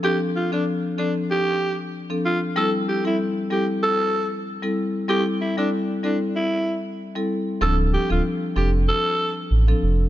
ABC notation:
X:1
M:4/4
L:1/16
Q:"Swing 16ths" 1/4=95
K:Dm
V:1 name="Alto saxophone"
G z F D z2 D z G3 z3 F z | A z G E z2 G z A3 z4 z | G z E D z2 D z E3 z4 z | A z G F z2 G z A3 z4 z |]
V:2 name="Marimba"
[F,CDA]3 [F,CDA] z2 [F,CDA] z6 [F,CDA] z2 | [G,CEA]3 [G,CEA] z2 [G,CEA] z6 [G,CEA] z2 | [G,CEA]3 [G,CEA] z2 [G,CEA] z6 [G,CEA] z2 | [F,CDA]3 [F,CDA] z2 [F,CDA] z6 [F,CDA] z2 |]
V:3 name="Sub bass" clef=bass
z16 | z16 | z16 | D,,,3 D,,, z2 F,,,3 z3 A,,,2 F,,,2 |]